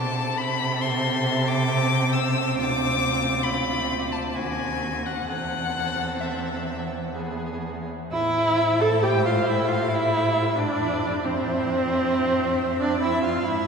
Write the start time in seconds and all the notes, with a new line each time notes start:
Already playing: C3 C4 A4 A5
0.38 B5
0.81 C6
1.47 D6
2.13 E6
2.57 D2 F4 D6
3.43 B5
4.12 A5
4.35 D#2 F#4 G#5
5.05 F#5
5.26 E2 C4 A4 F#5
6.20 E5
7.15 B3 G#4
8.11 A2 E4 C5 E5
8.80 A4 A5
9.02 G4 G5
9.25 F4 F5
9.46 E4 E5
9.68 F4
9.73 F5
9.89 E4
9.95 E5
10.56 D4 D5
10.80 F2 E5
11.25 C4 C5
12.80 D4 D5
13.01 E4 E5
13.24 F4 F5
13.44 G#2 E4 E5